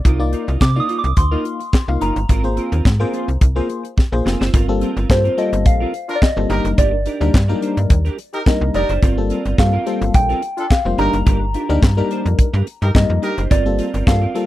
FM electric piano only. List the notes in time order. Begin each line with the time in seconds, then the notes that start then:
Already playing: D5
0.19 A#3 D#4 F4 D5
0.76 A#3 D#4 F4 D5
1.31 A#3 D#4 F4 F5
1.88 A#3 D#4 F4 F5
2.44 A#3 F4 G#4 C5
3.00 A#3 F4 G#4 C5
3.56 A#3 F4 G#4 C5
4.12 A#3 F4 G#4 C5
4.68 G3 A#3 C4 F4 A4
5.09 G3 A#3 C4 F4 A4
5.37 G3 A#3 C4 F4 A4
6.36 G3 A#3 C4 F4 A4
6.49 G3 A#3 D4 D#4 A#4
7.06 D#4 A#4
7.20 G3 A#3 D4 D#4 A#4
7.49 F#3 A#3 D4 D#4 A#4
7.55 G3
8.46 G3 A#3 D4 D#4 A#4
9.17 G3 A#3 C4 F4 A4
9.58 G3 A#3 C4 F4 A4
9.86 G3 A#3 C4 F4 A4
10.85 G3 A#3 C4 F4 C5
10.98 G3 A#3 D4 D#4 A#4
11.54 D#4 F4
11.69 G3 A#3 D4 D#4 A#4
11.97 G3 A#3 D4 D#4 A#4
12.95 G3 A#3 D#4 A#4
13.65 G3 A#3 C4 F4 A4
14.07 G3 A#3 C4 F4 A4
14.35 G3 A#3 C4 F4 A4